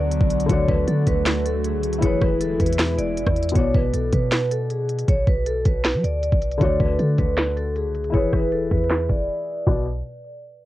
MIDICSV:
0, 0, Header, 1, 6, 480
1, 0, Start_track
1, 0, Tempo, 382166
1, 623, Time_signature, 4, 2, 24, 8
1, 13379, End_track
2, 0, Start_track
2, 0, Title_t, "Vibraphone"
2, 0, Program_c, 0, 11
2, 0, Note_on_c, 0, 74, 77
2, 579, Note_off_c, 0, 74, 0
2, 624, Note_on_c, 0, 73, 91
2, 840, Note_off_c, 0, 73, 0
2, 862, Note_on_c, 0, 71, 83
2, 1079, Note_off_c, 0, 71, 0
2, 1100, Note_on_c, 0, 69, 86
2, 1318, Note_off_c, 0, 69, 0
2, 1345, Note_on_c, 0, 71, 85
2, 1795, Note_off_c, 0, 71, 0
2, 1824, Note_on_c, 0, 69, 79
2, 2040, Note_off_c, 0, 69, 0
2, 2064, Note_on_c, 0, 68, 77
2, 2515, Note_off_c, 0, 68, 0
2, 2545, Note_on_c, 0, 73, 103
2, 2761, Note_off_c, 0, 73, 0
2, 2783, Note_on_c, 0, 71, 89
2, 2999, Note_off_c, 0, 71, 0
2, 3022, Note_on_c, 0, 69, 90
2, 3239, Note_off_c, 0, 69, 0
2, 3264, Note_on_c, 0, 71, 84
2, 3714, Note_off_c, 0, 71, 0
2, 3741, Note_on_c, 0, 74, 82
2, 4419, Note_off_c, 0, 74, 0
2, 4463, Note_on_c, 0, 73, 94
2, 4679, Note_off_c, 0, 73, 0
2, 4703, Note_on_c, 0, 71, 81
2, 4919, Note_off_c, 0, 71, 0
2, 4938, Note_on_c, 0, 69, 83
2, 5156, Note_off_c, 0, 69, 0
2, 5181, Note_on_c, 0, 71, 82
2, 5633, Note_off_c, 0, 71, 0
2, 5664, Note_on_c, 0, 69, 80
2, 5880, Note_off_c, 0, 69, 0
2, 5904, Note_on_c, 0, 68, 77
2, 6355, Note_off_c, 0, 68, 0
2, 6383, Note_on_c, 0, 73, 99
2, 6599, Note_off_c, 0, 73, 0
2, 6624, Note_on_c, 0, 71, 89
2, 6840, Note_off_c, 0, 71, 0
2, 6862, Note_on_c, 0, 69, 88
2, 7079, Note_off_c, 0, 69, 0
2, 7106, Note_on_c, 0, 71, 83
2, 7556, Note_off_c, 0, 71, 0
2, 7581, Note_on_c, 0, 74, 77
2, 8259, Note_off_c, 0, 74, 0
2, 8303, Note_on_c, 0, 73, 91
2, 8519, Note_off_c, 0, 73, 0
2, 8541, Note_on_c, 0, 71, 83
2, 8758, Note_off_c, 0, 71, 0
2, 8780, Note_on_c, 0, 69, 88
2, 8997, Note_off_c, 0, 69, 0
2, 9024, Note_on_c, 0, 71, 84
2, 9475, Note_off_c, 0, 71, 0
2, 9503, Note_on_c, 0, 69, 81
2, 9719, Note_off_c, 0, 69, 0
2, 9744, Note_on_c, 0, 68, 77
2, 10194, Note_off_c, 0, 68, 0
2, 10225, Note_on_c, 0, 73, 98
2, 10440, Note_off_c, 0, 73, 0
2, 10464, Note_on_c, 0, 71, 87
2, 10680, Note_off_c, 0, 71, 0
2, 10703, Note_on_c, 0, 69, 87
2, 10919, Note_off_c, 0, 69, 0
2, 10943, Note_on_c, 0, 71, 84
2, 11394, Note_off_c, 0, 71, 0
2, 11421, Note_on_c, 0, 74, 79
2, 12099, Note_off_c, 0, 74, 0
2, 12143, Note_on_c, 0, 74, 85
2, 12366, Note_off_c, 0, 74, 0
2, 13379, End_track
3, 0, Start_track
3, 0, Title_t, "Felt piano"
3, 0, Program_c, 1, 0
3, 0, Control_c, 1, 64, 127
3, 0, Note_on_c, 1, 47, 73
3, 0, Note_on_c, 1, 59, 64
3, 0, Note_on_c, 1, 66, 63
3, 0, Note_on_c, 1, 74, 79
3, 550, Note_off_c, 1, 47, 0
3, 564, Note_off_c, 1, 59, 0
3, 579, Note_off_c, 1, 66, 0
3, 580, Note_on_c, 1, 50, 75
3, 593, Note_off_c, 1, 74, 0
3, 608, Note_on_c, 1, 57, 66
3, 637, Note_on_c, 1, 66, 66
3, 640, Control_c, 1, 64, 0
3, 665, Note_on_c, 1, 74, 78
3, 826, Control_c, 1, 64, 127
3, 2482, Note_off_c, 1, 50, 0
3, 2494, Note_on_c, 1, 52, 72
3, 2497, Note_off_c, 1, 57, 0
3, 2512, Note_off_c, 1, 66, 0
3, 2522, Note_on_c, 1, 64, 63
3, 2526, Note_off_c, 1, 74, 0
3, 2551, Note_on_c, 1, 68, 69
3, 2562, Control_c, 1, 64, 0
3, 2580, Note_on_c, 1, 71, 75
3, 2772, Control_c, 1, 64, 127
3, 4399, Note_off_c, 1, 52, 0
3, 4414, Note_off_c, 1, 64, 0
3, 4418, Note_on_c, 1, 47, 72
3, 4429, Note_off_c, 1, 68, 0
3, 4443, Note_off_c, 1, 71, 0
3, 4446, Note_on_c, 1, 59, 62
3, 4475, Note_on_c, 1, 66, 57
3, 4478, Control_c, 1, 64, 0
3, 4504, Note_on_c, 1, 74, 75
3, 4683, Control_c, 1, 64, 127
3, 8230, Note_off_c, 1, 47, 0
3, 8244, Note_off_c, 1, 59, 0
3, 8259, Note_off_c, 1, 66, 0
3, 8260, Note_on_c, 1, 50, 72
3, 8273, Note_off_c, 1, 74, 0
3, 8289, Note_on_c, 1, 57, 64
3, 8317, Note_on_c, 1, 66, 66
3, 8322, Control_c, 1, 64, 0
3, 8346, Note_on_c, 1, 74, 80
3, 8549, Control_c, 1, 64, 127
3, 10163, Note_off_c, 1, 50, 0
3, 10173, Note_on_c, 1, 52, 67
3, 10177, Note_off_c, 1, 57, 0
3, 10192, Note_off_c, 1, 66, 0
3, 10202, Note_on_c, 1, 64, 60
3, 10206, Note_off_c, 1, 74, 0
3, 10231, Note_on_c, 1, 68, 68
3, 10237, Control_c, 1, 64, 0
3, 10260, Note_on_c, 1, 71, 78
3, 10470, Control_c, 1, 64, 127
3, 12079, Note_off_c, 1, 52, 0
3, 12094, Note_off_c, 1, 64, 0
3, 12108, Note_off_c, 1, 68, 0
3, 12123, Note_off_c, 1, 71, 0
3, 12142, Note_on_c, 1, 66, 77
3, 12142, Note_on_c, 1, 74, 97
3, 12143, Note_on_c, 1, 47, 85
3, 12143, Note_on_c, 1, 59, 82
3, 12161, Control_c, 1, 64, 0
3, 12366, Note_off_c, 1, 47, 0
3, 12366, Note_off_c, 1, 59, 0
3, 12366, Note_off_c, 1, 66, 0
3, 12366, Note_off_c, 1, 74, 0
3, 13379, End_track
4, 0, Start_track
4, 0, Title_t, "Ambient pad"
4, 0, Program_c, 2, 92
4, 0, Note_on_c, 2, 50, 78
4, 0, Note_on_c, 2, 54, 70
4, 0, Note_on_c, 2, 59, 74
4, 0, Note_on_c, 2, 66, 86
4, 585, Note_off_c, 2, 59, 0
4, 622, Note_on_c, 2, 57, 73
4, 2493, Note_off_c, 2, 50, 0
4, 2493, Note_off_c, 2, 54, 0
4, 2493, Note_off_c, 2, 66, 0
4, 2523, Note_off_c, 2, 57, 0
4, 2543, Note_on_c, 2, 47, 80
4, 2543, Note_on_c, 2, 52, 73
4, 2543, Note_on_c, 2, 56, 73
4, 2543, Note_on_c, 2, 64, 84
4, 4443, Note_off_c, 2, 56, 0
4, 4443, Note_off_c, 2, 64, 0
4, 4444, Note_off_c, 2, 47, 0
4, 4444, Note_off_c, 2, 52, 0
4, 13379, End_track
5, 0, Start_track
5, 0, Title_t, "808-style bass"
5, 0, Program_c, 3, 38
5, 0, Note_on_c, 3, 38, 112
5, 249, Note_off_c, 3, 38, 0
5, 261, Note_on_c, 3, 35, 106
5, 608, Note_off_c, 3, 35, 0
5, 623, Note_on_c, 3, 38, 114
5, 853, Note_off_c, 3, 38, 0
5, 862, Note_on_c, 3, 38, 102
5, 1093, Note_off_c, 3, 38, 0
5, 1103, Note_on_c, 3, 50, 107
5, 1333, Note_off_c, 3, 50, 0
5, 1344, Note_on_c, 3, 38, 115
5, 2183, Note_on_c, 3, 37, 100
5, 2202, Note_off_c, 3, 38, 0
5, 2525, Note_off_c, 3, 37, 0
5, 2543, Note_on_c, 3, 28, 112
5, 2773, Note_off_c, 3, 28, 0
5, 2782, Note_on_c, 3, 28, 105
5, 3243, Note_off_c, 3, 28, 0
5, 3263, Note_on_c, 3, 40, 108
5, 3724, Note_off_c, 3, 40, 0
5, 3742, Note_on_c, 3, 28, 111
5, 3982, Note_on_c, 3, 30, 96
5, 4001, Note_off_c, 3, 28, 0
5, 4094, Note_off_c, 3, 30, 0
5, 4101, Note_on_c, 3, 40, 104
5, 4448, Note_off_c, 3, 40, 0
5, 4463, Note_on_c, 3, 35, 107
5, 4693, Note_off_c, 3, 35, 0
5, 4702, Note_on_c, 3, 35, 100
5, 4933, Note_off_c, 3, 35, 0
5, 4943, Note_on_c, 3, 35, 108
5, 5173, Note_off_c, 3, 35, 0
5, 5183, Note_on_c, 3, 47, 108
5, 6335, Note_off_c, 3, 47, 0
5, 6383, Note_on_c, 3, 35, 108
5, 6613, Note_off_c, 3, 35, 0
5, 6622, Note_on_c, 3, 35, 101
5, 7083, Note_off_c, 3, 35, 0
5, 7104, Note_on_c, 3, 35, 111
5, 7463, Note_on_c, 3, 54, 101
5, 7482, Note_off_c, 3, 35, 0
5, 7577, Note_off_c, 3, 54, 0
5, 7583, Note_on_c, 3, 38, 107
5, 7929, Note_off_c, 3, 38, 0
5, 7942, Note_on_c, 3, 35, 102
5, 8288, Note_off_c, 3, 35, 0
5, 8303, Note_on_c, 3, 38, 111
5, 8533, Note_off_c, 3, 38, 0
5, 8542, Note_on_c, 3, 38, 105
5, 8773, Note_off_c, 3, 38, 0
5, 8783, Note_on_c, 3, 50, 112
5, 9013, Note_off_c, 3, 50, 0
5, 9023, Note_on_c, 3, 38, 107
5, 9862, Note_on_c, 3, 37, 99
5, 9881, Note_off_c, 3, 38, 0
5, 10205, Note_off_c, 3, 37, 0
5, 10222, Note_on_c, 3, 28, 107
5, 10453, Note_off_c, 3, 28, 0
5, 10461, Note_on_c, 3, 28, 102
5, 10923, Note_off_c, 3, 28, 0
5, 10943, Note_on_c, 3, 40, 105
5, 11404, Note_off_c, 3, 40, 0
5, 11422, Note_on_c, 3, 28, 110
5, 11663, Note_off_c, 3, 28, 0
5, 12142, Note_on_c, 3, 35, 105
5, 12589, Note_off_c, 3, 35, 0
5, 13379, End_track
6, 0, Start_track
6, 0, Title_t, "Drums"
6, 145, Note_on_c, 9, 42, 81
6, 261, Note_on_c, 9, 36, 102
6, 271, Note_off_c, 9, 42, 0
6, 379, Note_on_c, 9, 46, 63
6, 383, Note_on_c, 9, 42, 68
6, 387, Note_off_c, 9, 36, 0
6, 503, Note_off_c, 9, 42, 0
6, 503, Note_on_c, 9, 42, 65
6, 505, Note_off_c, 9, 46, 0
6, 623, Note_off_c, 9, 42, 0
6, 623, Note_on_c, 9, 36, 115
6, 623, Note_on_c, 9, 42, 93
6, 748, Note_off_c, 9, 36, 0
6, 748, Note_off_c, 9, 42, 0
6, 862, Note_on_c, 9, 36, 101
6, 987, Note_off_c, 9, 36, 0
6, 1103, Note_on_c, 9, 42, 92
6, 1228, Note_off_c, 9, 42, 0
6, 1341, Note_on_c, 9, 42, 83
6, 1343, Note_on_c, 9, 36, 91
6, 1466, Note_off_c, 9, 42, 0
6, 1469, Note_off_c, 9, 36, 0
6, 1582, Note_on_c, 9, 42, 74
6, 1583, Note_on_c, 9, 38, 127
6, 1584, Note_on_c, 9, 39, 105
6, 1708, Note_off_c, 9, 42, 0
6, 1709, Note_off_c, 9, 38, 0
6, 1710, Note_off_c, 9, 39, 0
6, 1829, Note_on_c, 9, 42, 88
6, 1955, Note_off_c, 9, 42, 0
6, 2065, Note_on_c, 9, 42, 80
6, 2190, Note_off_c, 9, 42, 0
6, 2303, Note_on_c, 9, 42, 67
6, 2422, Note_off_c, 9, 42, 0
6, 2422, Note_on_c, 9, 42, 66
6, 2542, Note_off_c, 9, 42, 0
6, 2542, Note_on_c, 9, 42, 93
6, 2543, Note_on_c, 9, 36, 115
6, 2668, Note_off_c, 9, 36, 0
6, 2668, Note_off_c, 9, 42, 0
6, 2782, Note_on_c, 9, 36, 103
6, 2783, Note_on_c, 9, 37, 66
6, 2908, Note_off_c, 9, 36, 0
6, 2909, Note_off_c, 9, 37, 0
6, 3022, Note_on_c, 9, 42, 92
6, 3148, Note_off_c, 9, 42, 0
6, 3262, Note_on_c, 9, 42, 50
6, 3263, Note_on_c, 9, 36, 90
6, 3342, Note_off_c, 9, 42, 0
6, 3342, Note_on_c, 9, 42, 66
6, 3389, Note_off_c, 9, 36, 0
6, 3422, Note_off_c, 9, 42, 0
6, 3422, Note_on_c, 9, 42, 84
6, 3502, Note_off_c, 9, 42, 0
6, 3502, Note_on_c, 9, 42, 71
6, 3503, Note_on_c, 9, 38, 127
6, 3504, Note_on_c, 9, 39, 98
6, 3627, Note_off_c, 9, 42, 0
6, 3629, Note_off_c, 9, 38, 0
6, 3630, Note_off_c, 9, 39, 0
6, 3749, Note_on_c, 9, 42, 84
6, 3875, Note_off_c, 9, 42, 0
6, 3985, Note_on_c, 9, 42, 77
6, 4101, Note_on_c, 9, 36, 106
6, 4103, Note_on_c, 9, 37, 89
6, 4110, Note_off_c, 9, 42, 0
6, 4223, Note_on_c, 9, 42, 49
6, 4227, Note_off_c, 9, 36, 0
6, 4229, Note_off_c, 9, 37, 0
6, 4303, Note_off_c, 9, 42, 0
6, 4303, Note_on_c, 9, 42, 63
6, 4383, Note_off_c, 9, 42, 0
6, 4383, Note_on_c, 9, 42, 82
6, 4463, Note_off_c, 9, 42, 0
6, 4463, Note_on_c, 9, 36, 109
6, 4463, Note_on_c, 9, 42, 86
6, 4589, Note_off_c, 9, 36, 0
6, 4589, Note_off_c, 9, 42, 0
6, 4702, Note_on_c, 9, 36, 96
6, 4828, Note_off_c, 9, 36, 0
6, 4942, Note_on_c, 9, 42, 93
6, 5068, Note_off_c, 9, 42, 0
6, 5181, Note_on_c, 9, 42, 78
6, 5184, Note_on_c, 9, 36, 89
6, 5306, Note_off_c, 9, 42, 0
6, 5309, Note_off_c, 9, 36, 0
6, 5422, Note_on_c, 9, 42, 73
6, 5423, Note_on_c, 9, 38, 125
6, 5424, Note_on_c, 9, 39, 97
6, 5547, Note_off_c, 9, 42, 0
6, 5549, Note_off_c, 9, 38, 0
6, 5550, Note_off_c, 9, 39, 0
6, 5669, Note_on_c, 9, 42, 83
6, 5795, Note_off_c, 9, 42, 0
6, 5905, Note_on_c, 9, 42, 80
6, 6031, Note_off_c, 9, 42, 0
6, 6143, Note_on_c, 9, 42, 65
6, 6263, Note_off_c, 9, 42, 0
6, 6263, Note_on_c, 9, 42, 62
6, 6383, Note_off_c, 9, 42, 0
6, 6383, Note_on_c, 9, 36, 115
6, 6383, Note_on_c, 9, 42, 90
6, 6509, Note_off_c, 9, 36, 0
6, 6509, Note_off_c, 9, 42, 0
6, 6622, Note_on_c, 9, 36, 97
6, 6748, Note_off_c, 9, 36, 0
6, 6863, Note_on_c, 9, 42, 91
6, 6988, Note_off_c, 9, 42, 0
6, 7101, Note_on_c, 9, 42, 80
6, 7104, Note_on_c, 9, 36, 92
6, 7227, Note_off_c, 9, 42, 0
6, 7229, Note_off_c, 9, 36, 0
6, 7343, Note_on_c, 9, 42, 72
6, 7344, Note_on_c, 9, 38, 118
6, 7345, Note_on_c, 9, 39, 97
6, 7468, Note_off_c, 9, 42, 0
6, 7469, Note_off_c, 9, 38, 0
6, 7470, Note_off_c, 9, 39, 0
6, 7590, Note_on_c, 9, 42, 85
6, 7715, Note_off_c, 9, 42, 0
6, 7825, Note_on_c, 9, 42, 77
6, 7942, Note_on_c, 9, 36, 98
6, 7951, Note_off_c, 9, 42, 0
6, 8060, Note_on_c, 9, 46, 59
6, 8063, Note_on_c, 9, 42, 67
6, 8067, Note_off_c, 9, 36, 0
6, 8183, Note_off_c, 9, 42, 0
6, 8183, Note_on_c, 9, 42, 64
6, 8185, Note_off_c, 9, 46, 0
6, 8303, Note_off_c, 9, 42, 0
6, 8303, Note_on_c, 9, 36, 113
6, 8303, Note_on_c, 9, 42, 90
6, 8429, Note_off_c, 9, 36, 0
6, 8429, Note_off_c, 9, 42, 0
6, 8542, Note_on_c, 9, 36, 100
6, 8668, Note_off_c, 9, 36, 0
6, 8782, Note_on_c, 9, 42, 89
6, 8908, Note_off_c, 9, 42, 0
6, 9021, Note_on_c, 9, 42, 78
6, 9023, Note_on_c, 9, 36, 88
6, 9146, Note_off_c, 9, 42, 0
6, 9149, Note_off_c, 9, 36, 0
6, 9262, Note_on_c, 9, 42, 70
6, 9263, Note_on_c, 9, 38, 122
6, 9264, Note_on_c, 9, 39, 100
6, 9388, Note_off_c, 9, 42, 0
6, 9389, Note_off_c, 9, 38, 0
6, 9390, Note_off_c, 9, 39, 0
6, 9509, Note_on_c, 9, 42, 81
6, 9635, Note_off_c, 9, 42, 0
6, 9745, Note_on_c, 9, 42, 80
6, 9870, Note_off_c, 9, 42, 0
6, 9982, Note_on_c, 9, 42, 64
6, 10102, Note_off_c, 9, 42, 0
6, 10102, Note_on_c, 9, 42, 65
6, 10222, Note_off_c, 9, 42, 0
6, 10222, Note_on_c, 9, 36, 113
6, 10222, Note_on_c, 9, 42, 91
6, 10348, Note_off_c, 9, 36, 0
6, 10348, Note_off_c, 9, 42, 0
6, 10462, Note_on_c, 9, 36, 96
6, 10462, Note_on_c, 9, 37, 66
6, 10587, Note_off_c, 9, 36, 0
6, 10588, Note_off_c, 9, 37, 0
6, 10702, Note_on_c, 9, 42, 91
6, 10828, Note_off_c, 9, 42, 0
6, 10942, Note_on_c, 9, 42, 48
6, 10943, Note_on_c, 9, 36, 92
6, 11022, Note_off_c, 9, 42, 0
6, 11022, Note_on_c, 9, 42, 65
6, 11069, Note_off_c, 9, 36, 0
6, 11102, Note_off_c, 9, 42, 0
6, 11102, Note_on_c, 9, 42, 79
6, 11182, Note_off_c, 9, 42, 0
6, 11182, Note_on_c, 9, 42, 73
6, 11183, Note_on_c, 9, 38, 123
6, 11184, Note_on_c, 9, 39, 102
6, 11307, Note_off_c, 9, 42, 0
6, 11308, Note_off_c, 9, 38, 0
6, 11309, Note_off_c, 9, 39, 0
6, 11422, Note_on_c, 9, 36, 96
6, 11429, Note_on_c, 9, 42, 84
6, 11548, Note_off_c, 9, 36, 0
6, 11554, Note_off_c, 9, 42, 0
6, 12142, Note_on_c, 9, 36, 111
6, 12142, Note_on_c, 9, 46, 93
6, 12268, Note_off_c, 9, 36, 0
6, 12268, Note_off_c, 9, 46, 0
6, 13379, End_track
0, 0, End_of_file